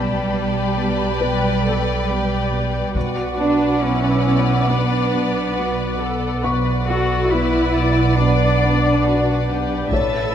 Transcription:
Already playing: B1 G3 B3 G4 B4 D5 G5 A5 B5
0.34 B3
0.77 B3
1.20 B2 B4
1.64 B2 A4
2.08 B3 G4
2.51 B2
2.94 B1 B2 F#4 B4 D5 F#5 D6, taiko
3.38 B3 D4
3.81 B3 C#4 E4
4.25 B3
4.69 B2 B3 D4
5.13 B2
5.56 B3 F#4
6.00 B2 A4
6.43 B1 B2 B4 D5 F#5 C#6
6.87 B3 F#4 A4
7.30 B3 E4 B4
7.74 B3 D5
8.17 B2 D4 D5
8.61 B2
9.04 B3 F#4
9.47 B2 G4
9.91 A1 A2 A4 B4 C#5 E5 A5 E6 A6, taiko

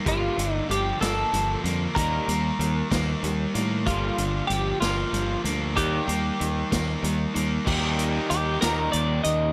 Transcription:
Already playing: A#3
0.05 G1 G2 D3 G3 F4, kick, closed hi-hat
0.38 G1 G2 D3, closed hi-hat
0.52 D#4
0.69 G1 G2 D3 F3 G4, closed hi-hat
1.00 G1 G2 D3 A#3 A4, snare, closed hi-hat
1.31 G1 G2 D3 F3, closed hi-hat
1.64 F2 G2 D3 A#3, closed hi-hat
1.95 D#2 D#3 G3 A#3 A#4, kick, closed hi-hat
2.28 D#2 D#3 G3 A#3, closed hi-hat
2.59 D#2 D#3 G3, closed hi-hat
2.90 D#2 D#3 G3 A#3, kick, snare, closed hi-hat
3.23 D#2 D#3 G3, closed hi-hat
3.54 A2 D#3 G3 A#3, closed hi-hat
3.86 G1 G2 D3 G3 F4, kick, closed hi-hat
4.18 G1 G2 D3, closed hi-hat
4.47 G1 G2 D3 F3 G4, closed hi-hat
4.81 G1 G2 D3 A#3 F4, snare, closed hi-hat
5.13 G1 G2 D3 F3, closed hi-hat
5.44 D2 G2 D3 A#3, closed hi-hat
5.76 D#2 D#3 G3 A#3 G4, kick, closed hi-hat
6.07 D#2 D#3 G3 A#3, closed hi-hat
6.40 D#2 D#3 G3, closed hi-hat
6.71 D#2 D#3 G3 A#3, kick, snare, closed hi-hat
7.03 D#2 D#3 G3, closed hi-hat
7.34 D#2 D#3 G3 A#3, closed hi-hat
7.64 D#2 D#3 G3 A#3 D#4 G4, kick, crash
7.99 closed hi-hat
8.30 D#2 G4, closed hi-hat
8.60 D#2 D#3 G3 A#3 D#4 G4 A#4, snare, closed hi-hat
8.92 D#2 D5, closed hi-hat
9.24 D#2 D#5, closed hi-hat

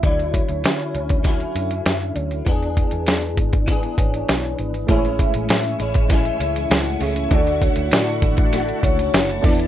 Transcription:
0.03 D2 D3 F#3 E4 D5, kick, closed hi-hat
0.19 closed hi-hat
0.33 C#5, kick, closed hi-hat
0.49 D2, closed hi-hat
0.63 D3 F#3 C#4 E4, snare, closed hi-hat
0.80 closed hi-hat
0.95 D2, closed hi-hat
1.09 kick, closed hi-hat
1.23 D3 F#3 E5, kick, snare, closed hi-hat
1.27 C#4 E4
1.40 closed hi-hat
1.55 F#2, closed hi-hat
1.71 closed hi-hat
1.86 F#2, snare, closed hi-hat
2.01 closed hi-hat
2.15 D2 C#5, closed hi-hat
2.31 closed hi-hat
2.45 E2 E3 B3 G#4, kick, closed hi-hat
2.49 D4 G#4
2.63 closed hi-hat
2.77 kick, closed hi-hat
2.91 E2, closed hi-hat
3.06 snare, closed hi-hat
3.22 closed hi-hat
3.37 G#2, kick, closed hi-hat
3.53 kick, closed hi-hat
3.66 E3 B3, kick, closed hi-hat
3.70 D4 G#4
3.83 closed hi-hat
3.98 G#1 C#5, kick, closed hi-hat
4.14 closed hi-hat
4.29 B1, snare, closed hi-hat
4.44 closed hi-hat
4.59 G#1 B4, closed hi-hat
4.74 closed hi-hat
4.87 A1 A2 E3 G#3 A3 C#4 E4 G#4 C#5 G#5 C#6 E6, kick, closed hi-hat
4.91 E4 C5
4.98 C#5
5.05 closed hi-hat
5.19 E5, kick, closed hi-hat
5.34 A1, closed hi-hat
5.49 A2 E5, snare, closed hi-hat
5.64 closed hi-hat
5.79 A1 G#3 C#4 E4 C#5, closed hi-hat
5.94 kick, closed hi-hat
6.09 A2 E3 G#3 E5, kick, snare, closed hi-hat
6.13 C#4 E4
6.25 closed hi-hat
6.40 C#2, closed hi-hat
6.56 closed hi-hat
6.70 C#2 F#5, snare, closed hi-hat
6.86 closed hi-hat
7.00 C#2 A3 C#4 E4 G#4 C#5 E5, open hi-hat
7.16 closed hi-hat
7.28 D2 D3 A3 D4 F#5, kick, closed hi-hat
7.32 F#4 A4 D5 A5
7.47 closed hi-hat
7.62 C#5, kick, closed hi-hat
7.76 D2, closed hi-hat
7.91 A2 D3 A3 F#4 D5, snare, closed hi-hat
8.07 closed hi-hat
8.22 A1, kick, closed hi-hat
8.37 kick, closed hi-hat
8.53 A3 F#4, snare, closed hi-hat
8.68 closed hi-hat
8.83 C#2 C#5, kick, closed hi-hat
8.99 closed hi-hat
9.14 F#1, snare, closed hi-hat
9.29 closed hi-hat
9.41 E2 B3 D4 E4 A4 B4 E5 B5, kick, open hi-hat
9.46 E3 B3 D5
9.59 closed hi-hat

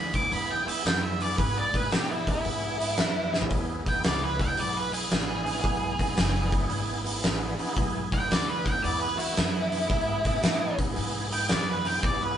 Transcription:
Already playing: D2 B3 E4 G#4 B5
0.14 B3 E4 G#4 D6, kick, open hi-hat
0.30 E2 B3 E4 G#4 B5, open hi-hat
0.51 G5
0.66 B3 E4 G#4 E5, muted upright bass stroke, open hi-hat
0.85 F#2 B3 E4 G#4 G5, snare, open hi-hat
1.03 E5
1.20 B3 E4 G#4 D5, open hi-hat
1.37 G#2 B3 E4 G#4 B4, kick, open hi-hat
1.58 D5
1.73 B3 E4 G#4 B4, kick, open hi-hat
1.89 B2 B3 E4 G4 G#4, snare, open hi-hat
2.09 E4
2.27 B3 E4 G#4, muted upright bass stroke, kick, open hi-hat
2.44 G#2 B3 E4 G#4, open hi-hat
2.80 B3 E4 G#4, open hi-hat
2.97 F#2 B3 E4 B4, snare, open hi-hat
3.32 B3 E4 G#4, snare
3.42 floor tom
3.50 E2 B3 E4 G#4, kick, open hi-hat
3.85 B3 E4 G#4 G5, kick, open hi-hat
4.04 C#2 B3 E4 G#4 D5, snare, open hi-hat
4.23 B4
4.39 B3 E4 G#4 G5, kick, open hi-hat
4.57 B1 B3 E4 G#4 D5, open hi-hat
4.77 B4
4.93 B3 E4 G#4, open hi-hat
5.11 A1 B3 E4 G#4, snare, open hi-hat
5.44 B3 E4 G#4, open hi-hat
5.63 B1 B3 E4 G#4, kick, open hi-hat
5.99 B3 E4 G#4, kick, open hi-hat
6.15 F#1 B3 E4 G#4, snare, open hi-hat
6.49 B3 E4 G#4, kick, open hi-hat
6.67 G#1 B3 E4 G#4, open hi-hat
7.03 B3 E4 G#4, open hi-hat
7.20 B3 E4 G#4, open hi-hat
7.24 A1, snare
7.59 B3 E4 G#4, muted upright bass stroke, open hi-hat
7.76 B1 B3 E4 G#4, kick, open hi-hat
8.11 B3 E4 G#4 G5, kick, open hi-hat
8.29 D2 B3 E4 G#4 D5, snare, open hi-hat
8.48 B4
8.64 B3 E4 G#4 G5, kick, open hi-hat
8.82 E2 B3 E4 G#4 D5, open hi-hat
9.00 B4
9.15 B3 E4 F#4, open hi-hat
9.33 B3 E4 G#4, open hi-hat
9.37 F#2, snare
9.70 B3 E4 G#4, open hi-hat
9.89 G#2 B3 E4 G#4, kick, open hi-hat
10.25 B3 E4 G#4, kick, open hi-hat
10.43 A2 B3 E4 G#4, snare, open hi-hat
10.77 B3 E4 G#4, kick, open hi-hat
10.93 B3 E4 G#4, open hi-hat
10.98 G#2
11.30 B3 E4 G#4 G5, open hi-hat
11.47 F#2 B3 E4 G#4 D5, snare, open hi-hat
11.69 B4
11.84 B3 E4 G#4 G5, open hi-hat
12.03 E2 B3 E4 G#4 D5, kick, open hi-hat
12.23 B4

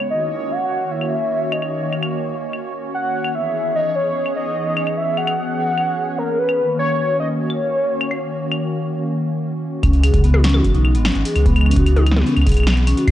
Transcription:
Already playing: C#5
0.00 claves
0.10 D#3 A#3 C#4 F#4 D#5
0.51 F#5
0.91 E5
1.01 claves
1.52 D#5, claves
1.62 claves
1.93 claves
2.03 claves
2.53 claves
2.94 F#5
3.24 claves
3.35 E3 B3 G#4 E5
3.75 D#5
3.96 C#5
4.26 claves
4.36 D#5
4.76 claves
4.87 claves
4.97 E5
5.17 F#5, claves
5.27 claves
5.78 claves
6.18 A#4
6.39 B4
6.49 claves
6.59 D#3 A#3 F#4
6.79 C#5
7.20 D#5
7.40 C#5
7.50 claves
8.01 claves
8.11 claves
8.51 claves
9.83 C#2 C#3 E3 G#3 B3 C#4, kick, closed hi-hat, claves
9.93 closed hi-hat
10.03 G#4, closed hi-hat, claves
10.14 C#2, kick, closed hi-hat
10.24 B3, closed hi-hat
10.34 high tom, claves
10.44 C#4, snare, closed hi-hat
10.49 closed hi-hat
10.54 F#4, high tom, claves
10.64 G#1, kick, closed hi-hat
10.74 B1 D#4, closed hi-hat
10.85 claves
10.95 G#1 B3, closed hi-hat
11.05 C#4, snare, closed hi-hat, claves
11.08 closed hi-hat
11.12 G#1, closed hi-hat
11.15 closed hi-hat
11.25 G#4, closed hi-hat
11.35 C#2, closed hi-hat, claves
11.45 B3, kick, closed hi-hat
11.55 closed hi-hat, claves
11.61 claves
11.66 C#4, claves
11.71 closed hi-hat, claves
11.76 C#2 F#4, kick, closed hi-hat
11.86 closed hi-hat, claves
11.96 D#4, closed hi-hat, high tom
12.06 closed hi-hat, claves
12.11 snare
12.16 B3, snare, closed hi-hat, high tom
12.21 snare
12.26 C#4, closed hi-hat
12.37 C#2, closed hi-hat, claves
12.42 claves
12.47 B1 G#4, kick, closed hi-hat, claves
12.49 closed hi-hat
12.52 closed hi-hat, claves
12.54 closed hi-hat
12.57 closed hi-hat, claves
12.60 claves
12.64 B3, snare, closed hi-hat, claves
12.67 claves
12.70 claves
12.74 closed hi-hat, claves
12.87 C#4, closed hi-hat, claves
12.97 F#4, closed hi-hat
13.07 D#2 F#3 A#3 D#4, kick, closed hi-hat, claves

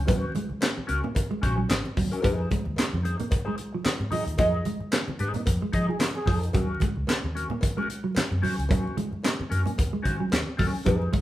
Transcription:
0.05 D#2 F#3 C4 F4 B4, kick, closed hi-hat, cowbell, muted conga, low conga
0.16 C#4 F#4 C5
0.23 muted clean electric guitar stroke
0.35 G#3, closed hi-hat, high conga
0.49 muted clean electric guitar stroke, muted fingered electric bass stroke, high conga
0.61 A#3, muted clean electric guitar stroke, snare, clap, closed hi-hat, cowbell, muted conga
0.76 muted clean electric guitar stroke, muted fingered electric bass stroke, high conga
0.87 C#2 C#4 F#4 A#4, muted clean electric guitar stroke, closed hi-hat
1.03 A#3, muted clean electric guitar stroke, low conga
1.15 kick, closed hi-hat, cowbell, muted conga, high conga
1.30 G#3, muted clean electric guitar stroke, muted conga
1.42 A#1 C#4 F#4 C5, muted clean electric guitar stroke, kick, closed hi-hat
1.58 F#3, muted clean electric guitar stroke
1.69 G#1, muted clean electric guitar stroke, snare, clap, closed hi-hat, cowbell, muted conga, high conga
1.83 muted clean electric guitar stroke, muted conga
1.97 D#2 F#3, kick, open hi-hat, high conga, low conga
2.12 C#4 F#4 A#4, closed hi-hat
2.22 F2 F3 D4 G4 C5, kick, closed hi-hat, cowbell, low conga
2.33 D#4 G#4
2.39 muted clean electric guitar stroke
2.51 G#3, kick, closed hi-hat, high conga
2.64 D#2, muted clean electric guitar stroke, high conga
2.76 A#3, muted clean electric guitar stroke, muted fingered electric bass stroke, snare, clap, closed hi-hat, cowbell
2.93 F2, muted conga, high conga
3.03 D#4 G#4 C5, muted clean electric guitar stroke, closed hi-hat
3.18 A#3, muted clean electric guitar stroke, closed hi-hat, low conga
3.29 muted clean electric guitar stroke, kick, closed hi-hat, cowbell, high conga
3.45 G#3 D#4 G#4 C5
3.57 muted clean electric guitar stroke, closed hi-hat
3.73 F3, muted clean electric guitar stroke
3.84 muted clean electric guitar stroke, muted fingered electric bass stroke, snare, clap, closed hi-hat, cowbell, high conga
3.99 G#2, muted clean electric guitar stroke, muted conga
4.11 F3 D#4 G#4 D#5, open hi-hat, high conga, low conga
4.26 D#2, muted clean electric guitar stroke, closed hi-hat
4.38 F2 F3 D#4 G#4 D#5, kick, closed hi-hat, cowbell, muted conga, low conga
4.55 muted clean electric guitar stroke
4.65 G#3, closed hi-hat, high conga
4.80 muted clean electric guitar stroke, muted fingered electric bass stroke, high conga
4.92 A#3, muted clean electric guitar stroke, snare, clap, closed hi-hat, cowbell
5.08 muted fingered electric bass stroke, muted clean electric guitar stroke, muted conga, high conga
5.19 G#2 D#4 G#4 C5, muted clean electric guitar stroke, closed hi-hat
5.34 A#3, muted clean electric guitar stroke, closed hi-hat, low conga
5.46 F2, kick, closed hi-hat, cowbell, high conga
5.61 G#3, muted clean electric guitar stroke, muted conga
5.72 F3 D#4 G#4 D#5, muted clean electric guitar stroke, kick, closed hi-hat
5.88 F3 G#4, muted clean electric guitar stroke
5.99 muted clean electric guitar stroke, snare, clap, closed hi-hat, cowbell, muted conga, high conga
6.14 G#4, muted clean electric guitar stroke, muted conga
6.26 F2 F3 D#4 G#4 C5, kick, open hi-hat, high conga, low conga
6.43 muted clean electric guitar stroke, closed hi-hat
6.53 D#2 F#3 C#4 F#4 A#4, kick, closed hi-hat, cowbell, low conga
6.70 muted clean electric guitar stroke
6.80 G#3, kick, closed hi-hat, high conga
6.95 C#2, muted clean electric guitar stroke, high conga
7.07 A#3, muted clean electric guitar stroke, muted fingered electric bass stroke, snare, clap, closed hi-hat, cowbell, muted conga
7.24 D#2, muted conga, high conga
7.35 C#4 F#4 A#4, muted clean electric guitar stroke, closed hi-hat
7.49 A#3, muted clean electric guitar stroke, low conga
7.61 muted clean electric guitar stroke, kick, closed hi-hat, cowbell, muted conga, high conga
7.77 G#3 C#4 F#4 A#4, muted conga
7.90 muted clean electric guitar stroke, closed hi-hat
8.03 F#3, muted clean electric guitar stroke
8.15 muted clean electric guitar stroke, muted fingered electric bass stroke, snare, clap, closed hi-hat, cowbell, muted conga, high conga
8.30 F#2, muted clean electric guitar stroke, muted conga
8.42 F#3 C#4 F#4 C5, open hi-hat, high conga, low conga
8.57 C#2, muted clean electric guitar stroke, closed hi-hat
8.69 D#2 F#3 C#4 F#4 C5, kick, closed hi-hat, cowbell, muted conga, low conga
8.86 muted clean electric guitar stroke, muted conga
8.97 G#3, closed hi-hat, high conga
9.11 muted clean electric guitar stroke, muted fingered electric bass stroke, high conga
9.23 A#3, muted clean electric guitar stroke, snare, clap, closed hi-hat, cowbell, muted conga
9.37 muted clean electric guitar stroke, muted fingered electric bass stroke, muted conga, high conga
9.50 F#2 C#4 F#4 A#4, muted clean electric guitar stroke, closed hi-hat
9.64 A#3, muted clean electric guitar stroke, closed hi-hat, low conga
9.78 D#2, kick, closed hi-hat, cowbell, high conga
9.91 G#3, muted clean electric guitar stroke
10.02 D#3 C#4 F#4 C5, muted clean electric guitar stroke, kick, closed hi-hat
10.18 F#3, muted clean electric guitar stroke
10.31 D#2, muted clean electric guitar stroke, snare, clap, closed hi-hat, cowbell, high conga
10.46 muted clean electric guitar stroke
10.57 D#2 F#3 C#4 F#4 A#4, kick, open hi-hat, high conga, low conga
10.73 muted clean electric guitar stroke
10.85 F2 F3 D4 G4 B4, kick, closed hi-hat, cowbell, low conga
10.96 D#4 G#4 C5
11.01 muted clean electric guitar stroke, muted conga
11.12 G#3, kick, closed hi-hat, high conga

